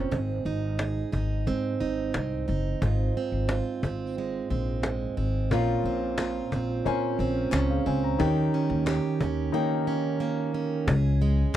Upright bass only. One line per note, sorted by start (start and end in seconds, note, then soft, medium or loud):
0.12 0.39 G#1 medium
0.45 1.01 G#1 medium
1.13 1.48 G#1 medium
1.47 1.74 G#2 medium
1.81 2.08 G#1 medium
2.15 2.42 C2 medium
2.49 2.76 F#1 medium
2.82 3.09 G#1 medium
3.32 3.60 G#1 medium
3.83 4.38 G#1 medium
4.50 5.06 A#1 medium
5.17 5.51 G#1 medium
5.51 5.79 A#1 medium
5.84 6.39 A#1 medium
6.52 6.80 A#1 medium
6.86 7.13 A#2 medium
7.19 7.47 A#1 medium
7.52 7.80 C#2 medium
7.86 8.14 C#2 medium
8.20 8.47 D#2 loud
8.70 8.97 D#2 medium
9.21 9.48 D#2 medium
10.87 11.42 C#2 loud